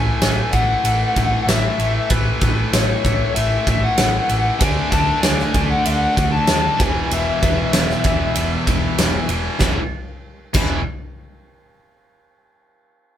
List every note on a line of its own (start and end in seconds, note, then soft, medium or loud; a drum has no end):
0.00 0.23 A2 medium
0.00 0.24 E3 medium
0.00 0.25 A3 medium
0.00 0.52 G#5 loud
0.21 0.41 A1 medium
0.21 0.52 A2 medium
0.21 0.53 E3 medium
0.21 snare loud
0.21 ride medium
0.25 0.54 A3 medium
0.52 0.73 A1 medium
0.52 0.83 A2 medium
0.52 0.84 E3 medium
0.52 0.85 A3 medium
0.52 1.49 F#5 loud
0.52 kick medium
0.52 ride medium
0.84 1.03 A1 medium
0.84 1.15 A2 medium
0.84 1.16 E3 loud
0.84 1.17 A3 loud
0.84 ride medium
1.16 1.35 A1 medium
1.16 1.46 A2 medium
1.16 1.47 E3 medium
1.16 1.48 A3 loud
1.16 kick medium
1.16 ride medium
1.47 1.66 A1 medium
1.47 1.78 A2 medium
1.47 1.79 E3 medium
1.47 1.80 A3 medium
1.47 2.12 E5 medium
1.47 snare loud
1.47 ride medium
1.78 1.98 A1 medium
1.78 2.10 A2 medium
1.78 2.10 E3 medium
1.78 2.12 A3 loud
1.78 ride medium
2.10 2.30 A1 loud
2.10 2.41 A2 loud
2.10 2.42 E3 loud
2.10 2.43 A3 loud
2.10 2.75 B4 medium
2.10 kick loud
2.10 ride medium
2.41 2.61 A1 medium
2.41 2.72 A2 medium
2.41 2.73 E3 medium
2.41 2.74 A3 medium
2.41 kick medium
2.41 ride medium
2.73 2.92 A1 medium
2.73 3.03 A2 medium
2.73 3.04 E3 medium
2.73 3.04 A3 medium
2.73 3.34 C#5 medium
2.73 snare loud
2.73 ride medium
3.04 3.24 A1 medium
3.04 3.34 A2 medium
3.04 3.35 E3 medium
3.04 3.36 A3 medium
3.04 kick medium
3.04 ride medium
3.35 3.55 A1 medium
3.35 3.65 A2 loud
3.35 3.66 E3 loud
3.35 3.66 A3 loud
3.35 3.67 E5 loud
3.35 ride medium
3.66 3.86 A1 medium
3.66 3.97 A2 loud
3.66 3.98 E3 medium
3.66 3.98 A3 medium
3.66 3.84 E5 medium
3.66 kick medium
3.66 ride medium
3.84 4.59 F#5 loud
3.97 4.17 A1 medium
3.97 4.27 A2 medium
3.97 4.28 E3 medium
3.97 4.28 A3 medium
3.97 snare loud
3.97 ride loud
4.28 4.49 A1 medium
4.28 4.58 A2 medium
4.28 4.59 E3 medium
4.28 4.59 A3 medium
4.28 ride medium
4.60 4.80 D2 loud
4.60 4.91 D3 loud
4.60 4.92 A3 loud
4.60 4.92 D4 loud
4.60 4.91 G#5 loud
4.60 kick loud
4.60 ride loud
4.91 5.11 D2 medium
4.91 5.23 D3 medium
4.91 5.23 A3 medium
4.91 5.24 D4 medium
4.91 5.21 A5 loud
4.91 kick medium
4.91 ride medium
5.21 5.42 D2 medium
5.21 5.54 D3 medium
5.21 5.54 A3 medium
5.21 5.55 D4 medium
5.21 5.70 G#5 loud
5.21 snare loud
5.21 ride medium
5.39 snare soft
5.54 5.74 D2 medium
5.54 5.85 D3 medium
5.54 5.86 A3 medium
5.54 5.87 D4 medium
5.54 kick medium
5.54 ride medium
5.71 5.85 F#5 medium
5.85 6.05 D2 medium
5.85 6.16 D3 medium
5.85 6.17 A3 loud
5.85 6.17 D4 loud
5.85 6.30 F#5 medium
5.85 ride medium
6.17 6.37 D2 medium
6.17 6.47 D3 medium
6.17 6.48 A3 medium
6.17 6.48 D4 medium
6.17 kick medium
6.17 ride medium
6.32 6.48 A5 medium
6.47 6.67 D#2 medium
6.47 6.77 D3 medium
6.47 6.78 A3 medium
6.47 6.78 D4 medium
6.47 snare loud
6.47 ride medium
6.52 6.81 A5 medium
6.80 6.99 E1 medium
6.80 7.10 E2 loud
6.80 7.11 B2 loud
6.80 7.10 E3 loud
6.80 7.13 G#5 loud
6.80 kick loud
6.80 ride medium
7.10 7.30 E1 medium
7.10 7.41 E2 medium
7.10 7.41 B2 medium
7.10 7.42 E3 loud
7.10 8.95 E5 medium
7.10 ride medium
7.42 7.62 E1 medium
7.42 7.71 E2 medium
7.42 7.72 B2 medium
7.42 7.73 E3 medium
7.42 kick medium
7.42 ride medium
7.72 7.93 E1 medium
7.72 8.02 E2 medium
7.72 8.03 B2 medium
7.72 8.04 E3 medium
7.72 snare loud
7.72 ride medium
7.90 snare soft
8.03 8.24 E1 medium
8.03 8.35 E2 medium
8.03 8.35 B2 medium
8.03 8.36 E3 medium
8.03 kick medium
8.03 ride medium
8.35 8.55 E1 loud
8.35 8.67 E2 medium
8.35 8.67 B2 loud
8.35 8.68 E3 loud
8.35 ride loud
8.67 8.86 E1 medium
8.67 8.98 E2 medium
8.67 9.00 B2 loud
8.67 9.00 E3 loud
8.67 kick medium
8.67 ride medium
8.98 9.18 E1 loud
8.98 9.29 E2 medium
8.98 9.30 B2 medium
8.98 9.31 E3 medium
8.98 snare loud
8.98 ride medium
9.28 9.48 E1 medium
9.28 9.59 E2 medium
9.28 9.60 B2 medium
9.28 9.60 E3 loud
9.28 ride medium
9.59 9.78 E1 loud
9.59 9.79 E2 loud
9.59 9.79 B2 medium
9.59 9.80 E3 loud
9.59 kick loud
9.59 snare medium
10.53 10.83 E1 loud
10.53 10.79 E2 loud
10.53 10.79 B2 loud
10.53 10.80 E3 loud
10.53 kick loud
10.53 crash medium